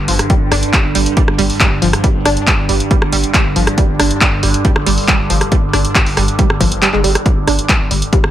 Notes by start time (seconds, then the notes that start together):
Already playing: G2 D3
0.08 G1 F3, open hi-hat
0.19 cross-stick, closed hi-hat
0.30 G3, kick, closed hi-hat
0.41 G1
0.52 G1 D4, cross-stick, open hi-hat
0.63 closed hi-hat
0.73 G3, kick, clap, closed hi-hat
0.84 G1
0.95 G1 G3, open hi-hat
1.06 closed hi-hat
1.17 G3, kick, closed hi-hat
1.28 G1, cross-stick
1.38 G1 G3, open hi-hat
1.50 open hi-hat
1.60 G3, kick, clap, closed hi-hat
1.71 G1
1.82 G1 F3, open hi-hat
1.93 cross-stick, closed hi-hat
2.04 G3, kick, closed hi-hat
2.15 G1
2.25 G1 D4, cross-stick, open hi-hat
2.37 closed hi-hat
2.47 G3, kick, clap, closed hi-hat
2.58 G1
2.69 G1 G3, open hi-hat
2.80 closed hi-hat
2.91 G3, kick, closed hi-hat
3.02 G1, cross-stick
3.12 G1 G3, open hi-hat
3.24 closed hi-hat
3.34 G3, kick, clap, closed hi-hat
3.45 G1
3.56 G1 F3, open hi-hat
3.67 cross-stick, closed hi-hat
3.78 G3, kick, closed hi-hat
3.89 G1
3.99 G1 D4, cross-stick, open hi-hat
4.11 closed hi-hat
4.21 G3, kick, clap, closed hi-hat
4.32 G1
4.43 G1 G3, open hi-hat
4.54 closed hi-hat
4.65 G3, kick, closed hi-hat
4.76 G1, cross-stick
4.86 G1 G3, open hi-hat
4.98 open hi-hat
5.08 G3, kick, clap, closed hi-hat
5.19 G1
5.30 G1 F3, open hi-hat
5.41 cross-stick, closed hi-hat
5.52 G3, kick, closed hi-hat
5.63 G1
5.73 G1 D4, cross-stick, open hi-hat
5.85 closed hi-hat
5.95 G3, kick, clap, closed hi-hat
6.06 G1, open hi-hat
6.17 G1 G3, cross-stick, open hi-hat
6.28 closed hi-hat
6.39 G3, kick, closed hi-hat
6.50 G1, cross-stick
6.60 G1 F3, kick, open hi-hat
6.72 closed hi-hat
6.82 G3, clap, closed hi-hat
6.93 G1 G#3, clap
7.04 G1 G3, open hi-hat
7.15 cross-stick, closed hi-hat
7.26 G2 D3 G3, kick, closed hi-hat
7.37 G1
7.47 G1 D4, cross-stick, open hi-hat
7.59 closed hi-hat
7.69 G3, kick, clap, closed hi-hat
7.80 G1
7.91 G1 G3, open hi-hat
8.02 closed hi-hat
8.13 G3, kick, closed hi-hat
8.24 G1, cross-stick